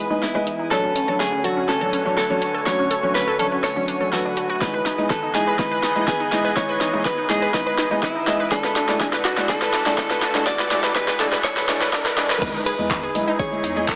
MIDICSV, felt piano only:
0, 0, Header, 1, 2, 480
1, 0, Start_track
1, 0, Key_signature, 4, "major"
1, 0, Tempo, 487805
1, 701, Time_signature, 4, 2, 24, 8
1, 13733, End_track
2, 0, Start_track
2, 0, Title_t, "Felt piano"
2, 0, Program_c, 0, 0
2, 104, Note_on_c, 0, 64, 82
2, 105, Note_on_c, 0, 56, 90
2, 105, Note_on_c, 0, 75, 99
2, 195, Note_off_c, 0, 56, 0
2, 195, Note_off_c, 0, 64, 0
2, 195, Note_off_c, 0, 75, 0
2, 345, Note_on_c, 0, 56, 92
2, 345, Note_on_c, 0, 64, 86
2, 345, Note_on_c, 0, 75, 104
2, 435, Note_off_c, 0, 56, 0
2, 435, Note_off_c, 0, 64, 0
2, 435, Note_off_c, 0, 75, 0
2, 701, Note_on_c, 0, 54, 91
2, 701, Note_on_c, 0, 62, 79
2, 701, Note_on_c, 0, 73, 101
2, 853, Note_off_c, 0, 54, 0
2, 853, Note_off_c, 0, 62, 0
2, 853, Note_off_c, 0, 73, 0
2, 1064, Note_on_c, 0, 54, 82
2, 1064, Note_on_c, 0, 62, 77
2, 1064, Note_on_c, 0, 73, 93
2, 1155, Note_off_c, 0, 54, 0
2, 1155, Note_off_c, 0, 62, 0
2, 1155, Note_off_c, 0, 73, 0
2, 1420, Note_on_c, 0, 54, 84
2, 1420, Note_on_c, 0, 62, 78
2, 1420, Note_on_c, 0, 73, 93
2, 1572, Note_off_c, 0, 54, 0
2, 1572, Note_off_c, 0, 62, 0
2, 1572, Note_off_c, 0, 73, 0
2, 1784, Note_on_c, 0, 54, 78
2, 1784, Note_on_c, 0, 62, 71
2, 1784, Note_on_c, 0, 73, 86
2, 1931, Note_off_c, 0, 54, 0
2, 1931, Note_off_c, 0, 62, 0
2, 1931, Note_off_c, 0, 73, 0
2, 2024, Note_on_c, 0, 54, 90
2, 2024, Note_on_c, 0, 62, 88
2, 2024, Note_on_c, 0, 73, 105
2, 2114, Note_off_c, 0, 62, 0
2, 2115, Note_off_c, 0, 54, 0
2, 2115, Note_off_c, 0, 73, 0
2, 2264, Note_on_c, 0, 54, 97
2, 2264, Note_on_c, 0, 62, 88
2, 2264, Note_on_c, 0, 73, 105
2, 2354, Note_off_c, 0, 54, 0
2, 2355, Note_off_c, 0, 62, 0
2, 2355, Note_off_c, 0, 73, 0
2, 2620, Note_on_c, 0, 54, 90
2, 2620, Note_on_c, 0, 62, 82
2, 2620, Note_on_c, 0, 73, 103
2, 2772, Note_off_c, 0, 54, 0
2, 2773, Note_off_c, 0, 62, 0
2, 2773, Note_off_c, 0, 73, 0
2, 2984, Note_on_c, 0, 54, 83
2, 2984, Note_on_c, 0, 62, 79
2, 2984, Note_on_c, 0, 73, 93
2, 3074, Note_off_c, 0, 54, 0
2, 3074, Note_off_c, 0, 62, 0
2, 3074, Note_off_c, 0, 73, 0
2, 3340, Note_on_c, 0, 54, 84
2, 3340, Note_on_c, 0, 62, 79
2, 3340, Note_on_c, 0, 73, 94
2, 3492, Note_off_c, 0, 54, 0
2, 3492, Note_off_c, 0, 62, 0
2, 3492, Note_off_c, 0, 73, 0
2, 3703, Note_on_c, 0, 73, 86
2, 3704, Note_on_c, 0, 54, 78
2, 3704, Note_on_c, 0, 62, 73
2, 3850, Note_off_c, 0, 54, 0
2, 3850, Note_off_c, 0, 62, 0
2, 3850, Note_off_c, 0, 73, 0
2, 3944, Note_on_c, 0, 54, 68
2, 3944, Note_on_c, 0, 62, 63
2, 3944, Note_on_c, 0, 73, 78
2, 4032, Note_off_c, 0, 73, 0
2, 4033, Note_off_c, 0, 54, 0
2, 4033, Note_off_c, 0, 62, 0
2, 4060, Note_on_c, 0, 54, 68
2, 4060, Note_on_c, 0, 62, 63
2, 4060, Note_on_c, 0, 71, 75
2, 4512, Note_off_c, 0, 54, 0
2, 4512, Note_off_c, 0, 62, 0
2, 4512, Note_off_c, 0, 71, 0
2, 4539, Note_on_c, 0, 56, 83
2, 4539, Note_on_c, 0, 64, 77
2, 4539, Note_on_c, 0, 75, 95
2, 4692, Note_off_c, 0, 56, 0
2, 4692, Note_off_c, 0, 64, 0
2, 4692, Note_off_c, 0, 75, 0
2, 4904, Note_on_c, 0, 56, 75
2, 4904, Note_on_c, 0, 64, 71
2, 4904, Note_on_c, 0, 75, 86
2, 4994, Note_off_c, 0, 56, 0
2, 4994, Note_off_c, 0, 64, 0
2, 4994, Note_off_c, 0, 75, 0
2, 5260, Note_on_c, 0, 56, 81
2, 5260, Note_on_c, 0, 64, 71
2, 5260, Note_on_c, 0, 75, 88
2, 5412, Note_off_c, 0, 56, 0
2, 5412, Note_off_c, 0, 64, 0
2, 5412, Note_off_c, 0, 75, 0
2, 5500, Note_on_c, 0, 56, 84
2, 5500, Note_on_c, 0, 64, 79
2, 5500, Note_on_c, 0, 75, 93
2, 5652, Note_off_c, 0, 56, 0
2, 5652, Note_off_c, 0, 64, 0
2, 5652, Note_off_c, 0, 75, 0
2, 5863, Note_on_c, 0, 56, 78
2, 5863, Note_on_c, 0, 64, 72
2, 5863, Note_on_c, 0, 75, 87
2, 5954, Note_off_c, 0, 56, 0
2, 5954, Note_off_c, 0, 64, 0
2, 5954, Note_off_c, 0, 75, 0
2, 6219, Note_on_c, 0, 75, 96
2, 6220, Note_on_c, 0, 56, 87
2, 6220, Note_on_c, 0, 64, 80
2, 6372, Note_off_c, 0, 56, 0
2, 6372, Note_off_c, 0, 64, 0
2, 6372, Note_off_c, 0, 75, 0
2, 6460, Note_on_c, 0, 56, 87
2, 6460, Note_on_c, 0, 64, 82
2, 6460, Note_on_c, 0, 75, 95
2, 6612, Note_off_c, 0, 56, 0
2, 6612, Note_off_c, 0, 64, 0
2, 6612, Note_off_c, 0, 75, 0
2, 6824, Note_on_c, 0, 56, 81
2, 6824, Note_on_c, 0, 64, 76
2, 6824, Note_on_c, 0, 75, 90
2, 6914, Note_off_c, 0, 56, 0
2, 6914, Note_off_c, 0, 64, 0
2, 6914, Note_off_c, 0, 75, 0
2, 7180, Note_on_c, 0, 56, 84
2, 7180, Note_on_c, 0, 64, 75
2, 7180, Note_on_c, 0, 75, 95
2, 7332, Note_off_c, 0, 56, 0
2, 7332, Note_off_c, 0, 64, 0
2, 7332, Note_off_c, 0, 75, 0
2, 7420, Note_on_c, 0, 56, 90
2, 7420, Note_on_c, 0, 64, 82
2, 7420, Note_on_c, 0, 75, 102
2, 7572, Note_off_c, 0, 56, 0
2, 7572, Note_off_c, 0, 64, 0
2, 7572, Note_off_c, 0, 75, 0
2, 7784, Note_on_c, 0, 56, 84
2, 7784, Note_on_c, 0, 64, 76
2, 7784, Note_on_c, 0, 75, 90
2, 7875, Note_off_c, 0, 56, 0
2, 7875, Note_off_c, 0, 64, 0
2, 7875, Note_off_c, 0, 75, 0
2, 8140, Note_on_c, 0, 56, 90
2, 8140, Note_on_c, 0, 64, 83
2, 8140, Note_on_c, 0, 75, 99
2, 8292, Note_off_c, 0, 56, 0
2, 8292, Note_off_c, 0, 64, 0
2, 8292, Note_off_c, 0, 75, 0
2, 8380, Note_on_c, 0, 74, 103
2, 8381, Note_on_c, 0, 56, 93
2, 8381, Note_on_c, 0, 64, 83
2, 8533, Note_off_c, 0, 56, 0
2, 8533, Note_off_c, 0, 64, 0
2, 8533, Note_off_c, 0, 74, 0
2, 8745, Note_on_c, 0, 56, 85
2, 8745, Note_on_c, 0, 64, 81
2, 8745, Note_on_c, 0, 74, 93
2, 8835, Note_off_c, 0, 56, 0
2, 8835, Note_off_c, 0, 64, 0
2, 8835, Note_off_c, 0, 74, 0
2, 8861, Note_on_c, 0, 56, 92
2, 8861, Note_on_c, 0, 64, 81
2, 8861, Note_on_c, 0, 74, 101
2, 9013, Note_off_c, 0, 56, 0
2, 9013, Note_off_c, 0, 64, 0
2, 9013, Note_off_c, 0, 74, 0
2, 9224, Note_on_c, 0, 56, 86
2, 9224, Note_on_c, 0, 64, 79
2, 9224, Note_on_c, 0, 74, 93
2, 9314, Note_off_c, 0, 56, 0
2, 9314, Note_off_c, 0, 64, 0
2, 9314, Note_off_c, 0, 74, 0
2, 9340, Note_on_c, 0, 56, 93
2, 9340, Note_on_c, 0, 64, 89
2, 9340, Note_on_c, 0, 74, 107
2, 9492, Note_off_c, 0, 56, 0
2, 9492, Note_off_c, 0, 64, 0
2, 9492, Note_off_c, 0, 74, 0
2, 9704, Note_on_c, 0, 56, 86
2, 9704, Note_on_c, 0, 64, 82
2, 9704, Note_on_c, 0, 74, 94
2, 9794, Note_off_c, 0, 56, 0
2, 9794, Note_off_c, 0, 64, 0
2, 9794, Note_off_c, 0, 74, 0
2, 9820, Note_on_c, 0, 64, 86
2, 9972, Note_off_c, 0, 64, 0
2, 10184, Note_on_c, 0, 56, 87
2, 10184, Note_on_c, 0, 64, 80
2, 10184, Note_on_c, 0, 74, 98
2, 10274, Note_off_c, 0, 56, 0
2, 10274, Note_off_c, 0, 64, 0
2, 10274, Note_off_c, 0, 74, 0
2, 10300, Note_on_c, 0, 56, 98
2, 10300, Note_on_c, 0, 64, 86
2, 10300, Note_on_c, 0, 74, 106
2, 10452, Note_off_c, 0, 56, 0
2, 10452, Note_off_c, 0, 64, 0
2, 10452, Note_off_c, 0, 74, 0
2, 10540, Note_on_c, 0, 56, 96
2, 10540, Note_on_c, 0, 64, 87
2, 10540, Note_on_c, 0, 74, 105
2, 10692, Note_off_c, 0, 56, 0
2, 10692, Note_off_c, 0, 64, 0
2, 10692, Note_off_c, 0, 74, 0
2, 10780, Note_on_c, 0, 56, 98
2, 10780, Note_on_c, 0, 64, 91
2, 10780, Note_on_c, 0, 74, 107
2, 10932, Note_off_c, 0, 56, 0
2, 10932, Note_off_c, 0, 64, 0
2, 10932, Note_off_c, 0, 74, 0
2, 11020, Note_on_c, 0, 56, 92
2, 11020, Note_on_c, 0, 64, 86
2, 11020, Note_on_c, 0, 74, 105
2, 11172, Note_off_c, 0, 56, 0
2, 11172, Note_off_c, 0, 64, 0
2, 11172, Note_off_c, 0, 74, 0
2, 11260, Note_on_c, 0, 56, 99
2, 11260, Note_on_c, 0, 64, 94
2, 11260, Note_on_c, 0, 74, 110
2, 11412, Note_off_c, 0, 56, 0
2, 11412, Note_off_c, 0, 64, 0
2, 11412, Note_off_c, 0, 74, 0
2, 11499, Note_on_c, 0, 64, 91
2, 11499, Note_on_c, 0, 74, 116
2, 11500, Note_on_c, 0, 56, 100
2, 11652, Note_off_c, 0, 56, 0
2, 11652, Note_off_c, 0, 64, 0
2, 11652, Note_off_c, 0, 74, 0
2, 11740, Note_on_c, 0, 56, 100
2, 11740, Note_on_c, 0, 64, 87
2, 11740, Note_on_c, 0, 74, 111
2, 11892, Note_off_c, 0, 56, 0
2, 11892, Note_off_c, 0, 64, 0
2, 11892, Note_off_c, 0, 74, 0
2, 11980, Note_on_c, 0, 56, 101
2, 11980, Note_on_c, 0, 64, 91
2, 11980, Note_on_c, 0, 74, 110
2, 12133, Note_off_c, 0, 56, 0
2, 12133, Note_off_c, 0, 64, 0
2, 12133, Note_off_c, 0, 74, 0
2, 12220, Note_on_c, 0, 56, 92
2, 12220, Note_on_c, 0, 64, 84
2, 12220, Note_on_c, 0, 75, 107
2, 12372, Note_off_c, 0, 64, 0
2, 12372, Note_off_c, 0, 75, 0
2, 12373, Note_off_c, 0, 56, 0
2, 12584, Note_on_c, 0, 56, 88
2, 12584, Note_on_c, 0, 64, 79
2, 12584, Note_on_c, 0, 75, 97
2, 12675, Note_off_c, 0, 56, 0
2, 12675, Note_off_c, 0, 64, 0
2, 12675, Note_off_c, 0, 75, 0
2, 12940, Note_on_c, 0, 56, 91
2, 12940, Note_on_c, 0, 64, 83
2, 12940, Note_on_c, 0, 75, 98
2, 13093, Note_off_c, 0, 56, 0
2, 13093, Note_off_c, 0, 64, 0
2, 13093, Note_off_c, 0, 75, 0
2, 13304, Note_on_c, 0, 56, 81
2, 13304, Note_on_c, 0, 64, 73
2, 13304, Note_on_c, 0, 75, 88
2, 13451, Note_off_c, 0, 56, 0
2, 13451, Note_off_c, 0, 64, 0
2, 13451, Note_off_c, 0, 75, 0
2, 13544, Note_on_c, 0, 56, 94
2, 13544, Note_on_c, 0, 64, 87
2, 13544, Note_on_c, 0, 75, 106
2, 13635, Note_off_c, 0, 56, 0
2, 13635, Note_off_c, 0, 64, 0
2, 13635, Note_off_c, 0, 75, 0
2, 13733, End_track
0, 0, End_of_file